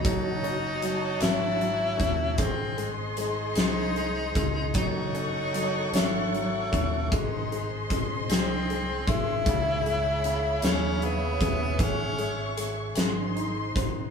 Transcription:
Already playing: F#4
0.03 F#1 F#3 D#4 C#5 F#5 A5, kick, closed hi-hat
0.44 C#4, closed hi-hat
0.82 F#3, closed hi-hat
1.21 G#1 C#4 E4, snare, closed hi-hat
1.59 F#3, closed hi-hat
1.97 D#2 C#4, kick, closed hi-hat
2.37 G#1 G#3 C4 G#4 C5 D#5 C6, kick, closed hi-hat
2.78 G#3, closed hi-hat
3.17 G#3 D#4, closed hi-hat
3.56 C2 G#3, snare, closed hi-hat
3.96 G#3, closed hi-hat
4.35 C#2 G#3, kick, closed hi-hat
4.74 F#1 F#3 D#4 A4 C#5 F#5 C#6, kick, closed hi-hat
5.14 C#4, closed hi-hat
5.54 F#3, closed hi-hat
5.93 G#1 C#4 E4, snare, closed hi-hat
6.33 F#3, closed hi-hat
6.72 D#2 C#4, kick, closed hi-hat
7.11 G#1 G#3 D#4 G#4 C5 D#5 C6, kick, closed hi-hat
7.52 G#3, closed hi-hat
7.90 G#3, kick, closed hi-hat
8.28 C2 G#3 C4, snare, closed hi-hat
8.70 G#3, closed hi-hat
9.07 G#1 G#3 E4, kick, closed hi-hat
9.44 C#2 C#5 E5 B5, kick, closed hi-hat
9.48 C#3
9.86 G#3, closed hi-hat
10.24 C#3, closed hi-hat
10.62 D#2 G#3 C#4, snare, closed hi-hat
11.02 C#3 B3, closed hi-hat
11.41 D#2 G#3, kick, closed hi-hat
11.78 G#1 G#3 C#6, kick, closed hi-hat
11.83 C#4
12.18 G#3, closed hi-hat
12.57 G#3, closed hi-hat
12.95 G#1 G#3 C5 D#5 C6, snare, closed hi-hat
13.36 D#4, closed hi-hat
13.75 G#1 C5, kick, closed hi-hat

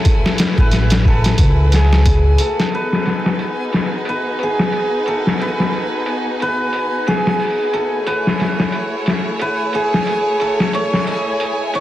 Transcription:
Already playing: A3 E4 F#4 A4 C#5 E5 G#5
0.05 B4, kick, closed hi-hat
0.26 snare
0.38 snare, closed hi-hat
0.58 A1 B4, kick
0.71 snare, closed hi-hat
0.90 snare, closed hi-hat
1.05 A4, kick
1.24 snare, closed hi-hat
1.38 C#2, kick, closed hi-hat
1.72 G#4, snare, closed hi-hat
1.93 snare
2.06 kick, closed hi-hat
2.38 A4, closed hi-hat
2.60 snare
2.71 B3 D#4 F#4 B4 G#5, closed hi-hat
2.93 snare
3.05 snare, closed hi-hat
3.26 snare
3.39 closed hi-hat
3.73 snare, closed hi-hat
4.05 B4, closed hi-hat
4.39 closed hi-hat
4.43 G#4
4.59 snare
4.72 closed hi-hat
5.06 A4, closed hi-hat
5.27 snare
5.40 B4, closed hi-hat
5.60 snare
5.73 closed hi-hat
6.06 closed hi-hat
6.40 B4, closed hi-hat
6.73 closed hi-hat
7.07 G#4, snare, closed hi-hat
7.27 snare
7.40 open hi-hat
7.73 A4, closed hi-hat
8.05 A3 E4 B4 C#5, closed hi-hat
8.27 snare
8.40 snare, closed hi-hat
8.60 snare
8.72 closed hi-hat
9.06 snare, closed hi-hat
9.39 B4, closed hi-hat
9.73 G#4, closed hi-hat
9.94 snare
10.07 closed hi-hat
10.40 A4, closed hi-hat
10.60 snare
10.73 C#5 G#5, closed hi-hat
10.94 snare
11.07 D#5, closed hi-hat
11.40 closed hi-hat
11.74 C#5, closed hi-hat

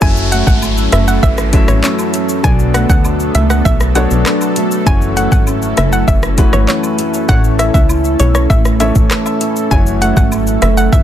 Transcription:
0.01 F#1 F#2 F#3 A3 C#4 E4 A4 E5 G#5, kick, downlifter, high woodblock, shaker
0.17 shaker
0.32 A3 F#5, closed hi-hat, cabasa, shaker
0.47 G#1 F#5, kick, shaker
0.62 C#4, high woodblock, shaker
0.77 shaker
0.92 F#1 A3 E5, cross-stick, closed hi-hat, cabasa, shaker
1.08 F#5, shaker
1.23 G#1 E3 E5, kick, shaker
1.38 cross-stick, shaker
1.52 F#3 A3 C#4 E4 A4 E5, kick, closed hi-hat, cabasa, high woodblock, shaker
1.68 A1 C#5, cross-stick, shaker
1.83 C#4 C#5, clap, shaker
1.99 high woodblock, shaker
2.14 A3, closed hi-hat, cabasa, shaker
2.29 shaker
2.43 B1 B2 F#3 B3 D4 A4 D5 G#5, kick, high woodblock, shaker
2.59 shaker
2.74 A3 F#5, cross-stick, closed hi-hat, cabasa, shaker
2.90 D2 F#5, kick, shaker
3.05 D4, high woodblock, shaker
3.20 shaker
3.35 C#2 A3 E5, closed hi-hat, cabasa, shaker
3.50 F#5, cross-stick, shaker
3.65 B1 F#3 E5, kick, shaker
3.80 cross-stick, shaker
3.95 F#3 A3 B3 D4 A4 C#5 F#5, closed hi-hat, cabasa, high woodblock, shaker
4.11 B1, shaker
4.26 D4, cross-stick, clap, shaker
4.41 high woodblock, shaker
4.56 A3, closed hi-hat, cabasa, shaker
4.71 shaker
4.86 F#1 F#2 E3 A3 C#4 E4 F#4 C#5 G#5, kick, high woodblock, shaker
5.02 shaker
5.17 A3 F#5, closed hi-hat, cabasa, shaker
5.32 G#1 F#5, kick, shaker
5.47 C#4, high woodblock, shaker
5.62 shaker
5.77 F#1 A3 E5, cross-stick, closed hi-hat, cabasa, shaker
5.93 F#5, shaker
6.08 F#1 E3 E5, kick, shaker
6.23 cross-stick, shaker
6.37 E3 A3 C#4 F#4 B4, kick, closed hi-hat, cabasa, high woodblock, shaker
6.53 G#1 C#5, cross-stick, shaker
6.68 C#4 C#5, clap, shaker
6.83 high woodblock, shaker
6.99 A3, closed hi-hat, cabasa, shaker
7.14 shaker
7.28 A1 A2 E3 A3 C#4 A4 C#5 F#5, kick, high woodblock, shaker
7.44 shaker
7.59 C#4 E5, cross-stick, closed hi-hat, cabasa, shaker
7.74 C#2 E5, kick, shaker
7.89 E4, high woodblock, shaker
8.04 shaker
8.20 B1 C#4 C#5, closed hi-hat, cabasa, shaker
8.35 C#5, cross-stick, shaker
8.50 A1 A3 E5, kick, shaker
8.65 cross-stick, shaker
8.80 E3 A3 C#4 A4 C#5 E5, closed hi-hat, cabasa, high woodblock, shaker
8.95 A1, kick, shaker
9.11 E4, cross-stick, clap, shaker
9.26 high woodblock, shaker
9.41 C#4, closed hi-hat, cabasa, shaker
9.56 shaker
9.71 F#1 F#2 E3 F#3 A3 C#4 F#4 C#5 G#5, kick, high woodblock, shaker
9.86 shaker
10.02 A3 F#5, closed hi-hat, cabasa, shaker
10.17 G#1 F#5, kick, shaker
10.32 C#4, high woodblock, shaker
10.47 shaker
10.62 F#1 A3 E5, cross-stick, closed hi-hat, cabasa, shaker
10.77 F#5, shaker
10.93 G#1 E3 E5, kick, shaker

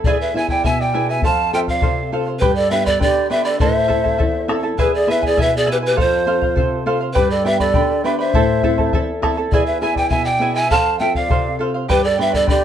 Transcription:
0.04 E2 E4 G#4 B4 D5 E5 G#5, bombo low
0.20 B4 E5
0.34 B3 E4 G#4 B4 E5 G#5
0.48 E4 B4 D5 G5 G#5, bombo low
0.64 B2 E4 B4 E5 G#5, bombo low
0.80 D5 G5
0.94 B3 E4 G#4 B4 E5 G#5
1.09 E4 B4 E5 G#5
1.22 F2 A4 C5 F5 A5, bombo low
1.53 C4 F4 A4 C5 E5 F5 G5
1.68 C5 D5 F5, bombo low
1.82 C3 A4 C5 F5, bombo low
2.12 C4 F4 A4 C5 F5
2.27 C5 F5
2.39 G2 G4 B4 D5 G5 B5, bombo low
2.55 A4 D5
2.71 B3 D4 G4 B4 D5 E5 G5 B5
2.86 A4 B4 D5 B5, bombo low
3.00 D3 B4 D5 G5 B5, bombo low
3.04 G4
3.30 B3 D4 G4 B4 D5 E5 G5 B5
3.45 A4 B4 D5 B5
3.60 A2 E4 A4 C5 E5 A5, bombo low
3.88 C4 E4 A4 E5 A5, bombo low
4.04 E4 A4 A5, bombo low
4.18 E2 E4 A4 E5 A5, bombo low
4.48 C4 E4 A4 E5 A5, bombo rim
4.63 E4 A4 A5
4.78 E2 E4 G#4 B4 E5 G#5, bombo low
4.95 G#4 D5
5.07 B3 E4 G#4 B4 E5 G#5
5.22 E4 B4 G#5, bombo low
5.26 G#4 D5
5.37 B2 E4 B4 E5 G#5, bombo low
5.41 B4 E5
5.56 G#4 D5
5.66 B3 E4 G#4 B4 E5 G#5
5.71 G4 B4
5.82 E4 B4 G#5
5.86 G4 B4
5.96 F2 A4 C5 F5, bombo low
6.01 F4
6.26 C4 F4 A4 C5 F5
6.41 C5 F5, bombo low
6.56 C3 A4 C5 F5, bombo low
6.86 C4 F4 A4 C5 F5
7.01 C5 F5
7.13 G2 G4 B4 D5 G5 B5, bombo low
7.30 A4 D5
7.44 B3 D4 G4 B4 D5 E5 G5 B5
7.48 B4
7.60 A4 B4 D5 B5, bombo low
7.74 D3 B4 D5 G5 B5, bombo low
8.04 B3 D4 G4 B4 D5 E5 G5 B5
8.19 B4 C5 D5 E5 B5
8.34 A2 E4 A4 C5 E5 A5, bombo low
8.63 C4 E4 A4 E5 A5, bombo low
8.78 E4 A4 A5, bombo low
8.93 E2 E4 A4 E5 A5, bombo low
9.22 C4 E4 A4 E5 A5, bombo rim, bombo low
9.37 E4 A4 A5
9.51 E2 E4 G#4 B4 D5 E5 G#5, bombo low
9.66 B4 E5
9.81 B3 E4 G#4 B4 E5 G#5
9.94 D5 G5 G#5, bombo low
9.99 E4 B4
10.09 B2 E4 B4 E5 G#5, bombo low
10.25 D5 G5
10.39 B3 E4 G#4 B4 E5 G#5
10.55 E4 B4 E5 G#5
10.71 F2 A4 C5 F5 A5, bombo low
10.99 C4 F4 A4 C5 E5 F5 G5
11.15 C5 D5 F5, bombo low
11.29 C3 A4 C5 F5, bombo low
11.59 C4 F4 A4 C5 F5
11.74 C5 F5
11.88 G2 G4 B4 D5 G5 B5, bombo low
12.04 A4 D5
12.18 B3 D4 G4 B4 D5 E5 G5 B5
12.32 A4 B4 D5 B5, bombo low
12.47 D3 G4 B4 D5 G5 B5, bombo low

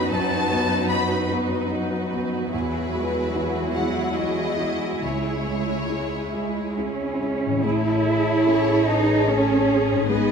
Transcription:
Already playing: F#2 F#3 B3 D#4 F#4 B4
0.10 F#2 A5
0.51 B3 F#4
0.90 D#4 F#4 B5
1.32 B3 F#4
1.72 D#4 F#4
2.13 B3 F#4
2.52 E2 F#3 E4 F#4 G#4 B4
2.94 G#3 F#4
3.36 E4 F#4
3.75 G#3 F#4 F#5
4.16 E4 F#4 D#5
4.59 G#3 F#4
5.02 C#2 G#3 E4 C#5
5.47 G#3 G#4
5.90 E4 G#4
6.34 G#3 G#4
6.78 C#4 E4 G#4
7.20 G#3 G#4
7.46 A2
7.50 E3
7.55 C#4
7.59 C#5
7.63 A1 A2 E4 G#4 A4 C#5
8.46 A3 C#4 C#5
8.88 D#4 B4
9.28 A3 C#4 A4 C#5
9.69 G#4
9.92 G#2
9.96 G#3
10.01 D#4
10.05 B4
10.09 G#1 G#2 B3 B4 D#5

